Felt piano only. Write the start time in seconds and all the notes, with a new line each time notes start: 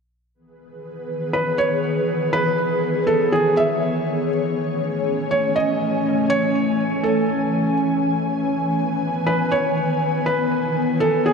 1.33 B4
1.58 C#5
2.33 B4
3.07 A4
3.32 G#4
3.57 E5
5.31 C#5
5.56 D#5
6.30 C#5
7.03 A4
9.27 B4
9.52 C#5
10.26 B4
11.00 A4
11.26 G#4